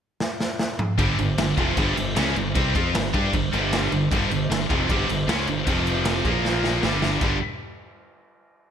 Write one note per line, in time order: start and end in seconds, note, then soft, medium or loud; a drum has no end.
0.20 snare medium
0.40 snare medium
0.59 snare medium
0.79 mid tom medium
0.98 1.17 G1 medium
0.98 1.17 G2 medium
0.98 1.17 D3 loud
0.98 1.18 G3 loud
0.98 kick loud
0.98 crash medium
1.18 1.37 G1 medium
1.18 1.34 G2 medium
1.18 1.34 D3 medium
1.18 crash medium
1.38 1.57 G1 medium
1.38 1.54 G2 medium
1.38 1.54 D3 medium
1.38 snare loud
1.38 crash medium
1.57 1.76 F1 medium
1.57 1.76 F2 medium
1.57 1.77 C3 medium
1.57 1.77 F3 loud
1.57 kick loud
1.57 crash medium
1.77 1.95 G1 medium
1.77 1.95 G2 medium
1.77 1.95 D3 loud
1.77 1.96 G3 medium
1.77 kick loud
1.77 crash medium
1.96 2.16 G1 medium
1.96 2.12 G2 medium
1.96 2.12 D3 medium
1.96 crash medium
2.15 2.35 C#2 loud
2.15 2.35 C#3 medium
2.15 2.35 G#3 medium
2.15 2.35 C#4 medium
2.15 snare loud
2.15 crash medium
2.35 2.54 G1 medium
2.35 2.51 G2 medium
2.35 2.52 D3 medium
2.35 crash medium
2.54 2.74 C2 medium
2.54 2.74 C3 loud
2.54 2.74 G3 loud
2.54 2.74 C4 loud
2.54 kick loud
2.54 crash medium
2.75 2.93 F2 medium
2.75 2.94 F3 loud
2.75 2.94 C4 medium
2.75 2.94 F4 loud
2.75 kick loud
2.75 crash medium
2.94 3.13 G1 medium
2.94 3.10 G2 medium
2.94 3.10 D3 medium
2.94 snare loud
2.94 crash medium
3.14 3.32 G2 loud
3.14 3.33 G3 medium
3.14 3.33 D4 medium
3.14 3.33 G4 loud
3.14 kick loud
3.14 crash medium
3.33 3.52 G1 medium
3.33 3.49 G2 medium
3.33 3.49 D3 medium
3.33 kick loud
3.33 crash medium
3.53 3.89 G1 medium
3.53 3.91 G2 medium
3.53 3.91 D3 loud
3.53 3.92 G3 loud
3.53 crash medium
3.72 snare loud
3.72 crash medium
3.92 4.10 G1 medium
3.92 4.08 G2 medium
3.92 4.08 D3 medium
3.92 crash medium
4.11 4.30 G1 loud
4.11 4.30 G2 medium
4.11 4.30 D3 loud
4.11 4.31 G3 loud
4.11 kick loud
4.11 crash medium
4.30 4.49 G1 medium
4.30 4.47 G2 medium
4.30 4.47 D3 medium
4.30 crash medium
4.50 4.68 G1 medium
4.50 4.66 G2 medium
4.50 4.66 D3 medium
4.50 snare loud
4.50 crash medium
4.69 4.88 F1 loud
4.69 4.88 F2 loud
4.69 4.89 C3 loud
4.69 4.89 F3 loud
4.69 kick loud
4.69 crash medium
4.89 5.08 G1 loud
4.89 5.08 G2 loud
4.89 5.08 D3 medium
4.89 5.08 G3 loud
4.89 kick loud
4.89 crash medium
5.09 5.27 G1 medium
5.09 5.24 G2 medium
5.09 5.24 D3 medium
5.09 crash medium
5.27 5.46 C#2 medium
5.27 5.46 C#3 medium
5.27 5.47 G#3 medium
5.27 5.47 C#4 loud
5.27 snare loud
5.27 crash medium
5.47 5.65 G1 medium
5.47 5.63 G2 medium
5.47 5.63 D3 medium
5.47 crash medium
5.66 6.21 F1 loud
5.66 6.24 F2 medium
5.66 6.24 C3 medium
5.66 6.24 F3 loud
5.66 kick loud
5.66 crash medium
5.87 crash medium
6.05 snare loud
6.05 crash medium
6.25 6.79 A#1 loud
6.25 6.82 A#2 loud
6.25 6.82 F3 loud
6.25 6.83 A#3 loud
6.25 kick loud
6.25 crash medium
6.45 snare medium
6.64 snare medium
6.83 7.19 G1 medium
6.83 7.20 G2 medium
6.83 7.21 D3 loud
6.83 7.21 G3 loud
6.83 snare medium
7.02 snare medium
7.21 7.39 G1 medium
7.21 7.37 G2 medium
7.21 7.37 D3 medium
7.21 7.37 G3 loud
7.21 kick loud
7.21 crash medium